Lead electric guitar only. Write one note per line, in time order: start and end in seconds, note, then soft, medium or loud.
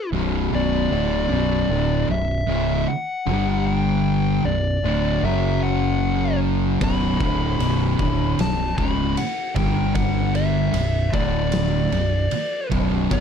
0.55 2.06 D5 medium
2.11 2.91 E5 medium
2.88 3.66 F#5 medium
3.67 4.48 G5 loud
4.45 5.25 D5 medium
5.25 5.61 E5 medium
5.63 6.38 F#5 medium
6.84 8.40 B5 loud
8.41 8.77 A5 loud
8.78 9.15 B5 medium
9.18 9.55 F#5 medium
9.56 9.95 G5 medium
9.95 10.35 F#5 medium
10.36 11.17 E5 medium
11.14 12.68 D5 medium
13.12 13.20 D5 loud